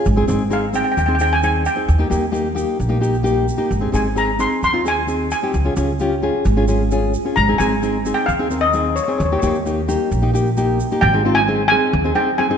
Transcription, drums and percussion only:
0.05 shaker medium
0.28 shaker medium
0.51 shaker medium
0.74 shaker medium
0.97 shaker medium
1.19 shaker medium
1.43 shaker medium
1.65 shaker medium
1.89 shaker soft
2.12 shaker medium
2.34 shaker medium
2.57 shaker medium
2.80 shaker medium
3.03 shaker medium
3.14 shaker soft
3.26 shaker medium
3.48 shaker medium
3.71 shaker medium
3.94 shaker medium
4.17 shaker medium
4.39 shaker medium
4.63 shaker medium
4.86 shaker medium
5.08 shaker medium
5.31 shaker medium
5.54 shaker medium
5.76 shaker medium
5.99 shaker medium
6.45 shaker medium
6.68 shaker medium
6.91 shaker medium
7.14 shaker medium
7.37 shaker medium
7.60 shaker medium
7.83 shaker medium
8.06 shaker medium
8.29 shaker medium
8.51 shaker medium
8.73 shaker medium
8.97 shaker loud
9.20 shaker medium
9.42 shaker loud
9.55 shaker soft
9.66 shaker medium
9.89 shaker medium
10.12 shaker medium
10.35 shaker medium
10.46 shaker soft
10.57 shaker medium
10.80 shaker medium
10.91 shaker soft

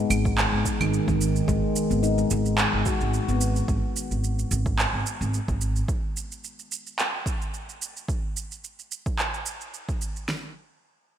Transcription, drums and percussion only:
0.11 claves medium
0.11 shaker medium
0.25 kick loud
0.25 shaker soft
0.38 clap medium
0.38 shaker soft
0.65 kick medium
0.65 shaker medium
0.81 claves medium
0.81 shaker soft
0.94 shaker soft
1.08 kick loud
1.08 shaker soft
1.21 shaker medium
1.36 shaker soft
1.48 kick loud
1.48 shaker soft
1.76 shaker medium
1.91 shaker soft
2.03 shaker soft
2.18 shaker soft
2.31 shaker medium
2.46 shaker soft
2.58 clap medium
2.58 shaker soft
2.86 kick loud
2.86 shaker medium
3.01 shaker soft
3.14 shaker soft
3.29 shaker soft
3.41 shaker medium
3.56 shaker soft
3.68 kick loud
3.68 shaker soft
3.96 shaker medium
4.11 shaker soft
4.24 shaker soft
4.39 shaker soft
4.51 shaker medium
4.66 kick loud
4.66 shaker soft
4.79 clap medium
4.79 shaker soft
5.06 shaker medium
5.22 shaker soft
5.34 shaker soft
5.48 kick loud
5.48 shaker soft
5.61 shaker medium
5.76 shaker soft
5.88 kick loud
5.88 shaker soft
6.17 shaker medium
6.32 shaker soft
6.44 shaker soft
6.59 shaker soft
6.72 shaker medium
6.87 shaker soft
6.99 clap medium
6.99 shaker soft
7.26 kick loud
7.26 shaker medium
7.42 shaker soft
7.54 shaker soft
7.69 shaker soft
7.82 shaker medium
7.97 shaker soft
8.09 kick loud
8.09 shaker soft
8.37 shaker medium
8.52 shaker soft
8.64 shaker soft
8.79 shaker soft
8.92 shaker medium
9.06 kick medium
9.06 shaker soft
9.19 clap medium
9.19 shaker soft
9.34 shaker soft
9.46 shaker medium
9.61 shaker soft
9.74 shaker soft
9.89 kick medium
9.89 shaker soft
10.01 shaker medium
10.16 shaker soft
10.29 snare medium

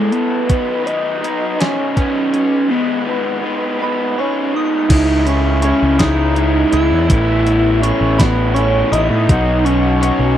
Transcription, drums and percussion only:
0.12 closed hi-hat medium
0.49 kick medium
0.49 closed hi-hat medium
0.87 closed hi-hat medium
1.24 closed hi-hat medium
1.61 snare loud
1.61 closed hi-hat medium
1.97 kick medium
1.97 closed hi-hat medium
2.34 closed hi-hat medium
4.90 kick loud
4.90 closed hi-hat medium
4.90 crash loud
5.27 closed hi-hat medium
5.62 closed hi-hat medium
5.99 kick medium
5.99 snare loud
5.99 closed hi-hat medium
6.36 closed hi-hat medium
6.72 closed hi-hat medium
7.10 kick loud
7.10 closed hi-hat medium
7.47 closed hi-hat medium
7.83 closed hi-hat medium
8.20 kick medium
8.20 snare loud
8.20 closed hi-hat medium
8.56 closed hi-hat medium
8.93 closed hi-hat medium
9.29 kick loud
9.29 closed hi-hat medium
9.66 closed hi-hat medium
10.03 closed hi-hat medium

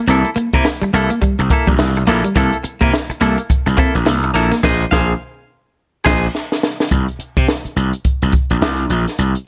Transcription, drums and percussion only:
0.08 closed hi-hat medium
0.25 closed hi-hat soft
0.36 closed hi-hat medium
0.53 kick loud
0.53 closed hi-hat medium
0.65 snare medium
0.82 closed hi-hat soft
0.94 closed hi-hat medium
1.10 closed hi-hat medium
1.22 kick medium
1.22 closed hi-hat medium
1.39 closed hi-hat soft
1.50 kick medium
1.50 closed hi-hat medium
1.67 kick loud
1.67 closed hi-hat soft
1.79 snare loud
1.96 closed hi-hat medium
2.07 closed hi-hat medium
2.24 closed hi-hat medium
2.36 kick loud
2.36 closed hi-hat medium
2.53 closed hi-hat soft
2.64 closed hi-hat medium
2.81 kick loud
2.81 closed hi-hat medium
2.94 snare medium
3.10 closed hi-hat soft
3.22 closed hi-hat medium
3.38 closed hi-hat medium
3.50 kick medium
3.50 closed hi-hat medium
3.67 closed hi-hat soft
3.77 kick medium
3.77 closed hi-hat medium
3.95 closed hi-hat soft
4.07 snare loud
4.23 closed hi-hat medium
4.35 closed hi-hat medium
4.52 snare soft
4.52 closed hi-hat medium
4.64 kick loud
4.64 snare medium
4.64 crash medium
4.92 kick loud
4.92 snare loud
6.06 kick loud
6.06 snare loud
6.06 crash medium
6.35 snare soft
6.52 snare medium
6.63 snare medium
6.80 snare medium
6.91 kick loud
6.91 closed hi-hat medium
7.08 closed hi-hat soft
7.20 closed hi-hat medium
7.37 kick medium
7.37 closed hi-hat soft
7.48 snare medium
7.65 closed hi-hat soft
7.77 closed hi-hat medium
7.93 closed hi-hat soft
8.05 kick medium
8.05 closed hi-hat medium
8.22 closed hi-hat soft
8.32 kick medium
8.32 closed hi-hat medium
8.50 closed hi-hat soft
8.62 snare loud
8.78 closed hi-hat soft
8.90 closed hi-hat medium
9.07 snare soft
9.07 closed hi-hat medium
9.19 closed hi-hat medium
9.35 closed hi-hat soft

